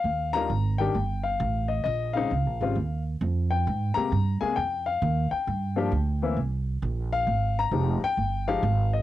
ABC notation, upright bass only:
X:1
M:4/4
L:1/8
Q:"Swing" 1/4=133
K:Eb
V:1 name="Upright bass" clef=bass
E,,2 A,,,2 G,,,2 =A,,,2 | B,,,2 (3_D,, B,,, A,,, E,,2 F,,2 | A,, z G,, z F,,2 E,, z | G,,2 D,,2 C,,2 B,,,2 |
A,,,2 F,,, z G,,,2 A,,,2 |]